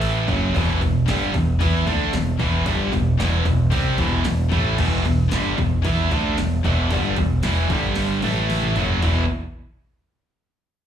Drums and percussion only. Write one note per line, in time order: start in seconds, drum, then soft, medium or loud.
0.02 open hi-hat medium
0.28 kick loud
0.28 open hi-hat medium
0.55 kick loud
0.55 open hi-hat medium
0.69 snare soft
0.81 kick loud
0.81 open hi-hat medium
1.08 snare loud
1.08 open hi-hat medium
1.34 kick loud
1.34 open hi-hat medium
1.61 kick loud
1.61 open hi-hat medium
1.87 kick loud
1.87 open hi-hat medium
2.13 snare loud
2.13 open hi-hat loud
2.40 kick loud
2.40 open hi-hat medium
2.66 kick loud
2.66 open hi-hat medium
2.93 kick loud
2.93 open hi-hat medium
3.20 snare loud
3.20 open hi-hat loud
3.45 kick loud
3.45 open hi-hat medium
3.72 kick loud
3.72 open hi-hat loud
3.98 kick loud
3.98 open hi-hat medium
4.24 snare loud
4.24 open hi-hat medium
4.52 kick loud
4.52 open hi-hat medium
4.78 kick loud
4.78 crash loud
5.05 kick medium
5.05 open hi-hat medium
5.31 snare loud
5.31 open hi-hat medium
5.58 kick medium
5.58 open hi-hat medium
5.84 kick loud
5.84 open hi-hat medium
6.11 kick loud
6.11 open hi-hat medium
6.38 snare loud
6.38 open hi-hat medium
6.65 kick loud
6.65 open hi-hat medium
6.90 kick loud
6.90 open hi-hat medium
7.04 snare soft
7.16 kick loud
7.16 open hi-hat medium
7.43 snare loud
7.43 open hi-hat loud
7.70 kick loud
7.70 open hi-hat medium
7.95 snare medium
7.95 open hi-hat loud
8.22 open hi-hat medium
8.22 high tom medium
8.50 open hi-hat medium
8.50 mid tom medium
8.62 mid tom medium
8.76 floor tom loud
8.76 open hi-hat medium
8.89 floor tom medium
9.02 kick loud
9.02 floor tom medium
9.02 open hi-hat medium